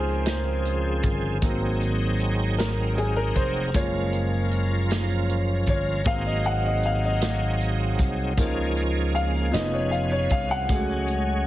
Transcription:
0.00 1.00 C#2 medium
0.00 1.39 C#3 medium
0.00 1.45 D#3 soft
0.00 1.38 F3 medium
0.00 1.44 F3 soft
0.00 1.38 C4 medium
0.00 1.43 C4 medium
0.00 0.28 G#4 medium
0.00 1.38 G#4 medium
0.00 1.44 A#4 medium
0.00 0.28 C5 medium
0.26 1.00 C5 medium
0.26 snare medium
0.26 closed hi-hat medium
0.65 closed hi-hat soft
1.03 1.39 G1 medium
1.03 kick medium
1.03 closed hi-hat soft
1.42 3.31 G#1 loud
1.42 2.54 F#3 soft
1.42 3.70 F#3 medium
1.42 2.54 A#3 soft
1.42 3.70 C4 medium
1.42 2.55 C4 medium
1.42 3.70 D#4 medium
1.42 3.70 G#4 medium
1.42 kick loud
1.42 closed hi-hat medium
1.81 closed hi-hat soft
2.20 closed hi-hat soft
2.58 2.98 A#4 medium
2.58 snare loud
2.58 closed hi-hat medium
2.98 3.15 G#4 medium
2.98 closed hi-hat soft
3.16 3.36 A#4 medium
3.35 3.71 F1 medium
3.35 3.75 C5 medium
3.35 kick medium
3.35 closed hi-hat soft
3.74 5.64 F#1 loud
3.74 4.86 F3 soft
3.74 6.02 F3 medium
3.74 4.87 G#3 soft
3.74 4.87 A#3 medium
3.74 6.02 C#4 medium
3.74 6.02 F4 medium
3.74 3.81 G#4 medium
3.74 4.48 C#5 medium
3.74 kick medium
3.74 closed hi-hat medium
3.81 6.05 A#4 medium
4.13 closed hi-hat soft
4.51 closed hi-hat soft
4.91 snare loud
4.91 closed hi-hat medium
5.29 closed hi-hat soft
5.66 6.03 G1 medium
5.66 6.08 C#5 medium
5.66 kick medium
5.66 closed hi-hat soft
6.04 7.95 G#1 loud
6.04 8.33 F#3 medium
6.04 8.34 F#3 soft
6.04 8.34 A#3 soft
6.04 8.33 C4 medium
6.04 8.34 C4 medium
6.04 8.33 D#4 medium
6.04 8.34 G#4 medium
6.04 6.26 F5 medium
6.04 kick loud
6.04 closed hi-hat medium
6.26 6.46 D#5 medium
6.44 6.63 F#5 medium
6.44 closed hi-hat soft
6.66 6.85 D#5 medium
6.83 7.03 F5 medium
6.83 closed hi-hat soft
7.05 8.16 D#5 medium
7.22 snare loud
7.22 closed hi-hat loud
7.61 closed hi-hat soft
7.98 8.35 C2 medium
7.98 kick medium
7.98 closed hi-hat soft
8.37 9.50 C#2 medium
8.37 8.89 F3 soft
8.37 9.51 F3 medium
8.37 9.54 A#3 medium
8.37 8.89 A#3 soft
8.37 9.52 C#4 medium
8.37 8.90 D#4 medium
8.37 9.52 G#4 medium
8.37 kick medium
8.37 closed hi-hat medium
8.77 closed hi-hat soft
9.15 9.24 F5 medium
9.15 closed hi-hat soft
9.51 10.27 F1 medium
9.51 10.04 F3 soft
9.51 10.69 F3 soft
9.51 10.04 B3 soft
9.51 10.69 B3 soft
9.51 10.68 C#4 soft
9.51 10.05 D#4 medium
9.51 10.69 G#4 medium
9.51 9.73 D#5 medium
9.51 snare loud
9.51 closed hi-hat loud
9.73 9.93 C#5 medium
9.91 10.10 F5 medium
9.91 closed hi-hat soft
10.12 10.30 C#5 medium
10.30 10.66 C2 medium
10.30 10.49 F5 medium
10.30 kick medium
10.30 closed hi-hat soft
10.51 11.47 F#5 loud
10.69 11.47 C#2 loud
10.69 11.47 F#3 medium
10.69 11.47 G#3 medium
10.69 10.76 G#3 soft
10.69 11.47 A3 soft
10.69 11.47 C#4 medium
10.69 11.47 F#4 medium
10.69 11.47 G#4 medium
10.69 kick loud
10.69 closed hi-hat medium
11.08 closed hi-hat soft

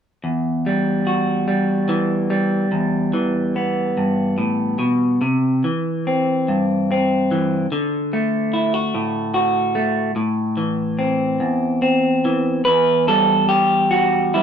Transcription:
0.24 2.71 E2 medium
0.66 1.47 G3 medium
1.07 2.66 F#4 soft
1.48 2.29 G3 medium
1.89 2.66 E3 medium
2.30 5.21 G3 medium
2.72 3.96 E2 medium
3.13 5.16 E3 medium
3.56 5.22 B3 soft
3.98 4.38 G2 medium
4.38 4.78 A2 medium
4.79 5.20 B2 medium
5.21 5.63 C3 medium
5.64 7.30 E3 medium
6.07 6.89 C4 medium
6.48 7.66 G2 medium
6.92 7.67 C4 medium
7.31 7.66 E3 medium
7.72 10.16 D3 medium
8.13 9.74 A3 medium
8.53 8.74 E4 medium
8.74 9.33 F#4 medium
8.95 10.15 A2 medium
9.34 10.11 F#4 medium
9.75 10.11 A3 medium
10.16 11.40 A2 medium
10.57 12.24 E3 medium
10.99 11.81 C4 soft
11.40 12.66 E2 medium
11.82 12.61 C4 medium
12.25 12.61 E3 medium
12.65 14.43 E2 medium
12.65 13.07 B4 loud
13.08 14.34 G3 medium
13.08 13.48 A4 medium
13.49 14.33 G4 medium
13.91 14.43 F#4 medium
14.34 14.43 G3 medium
14.34 14.43 E4 medium

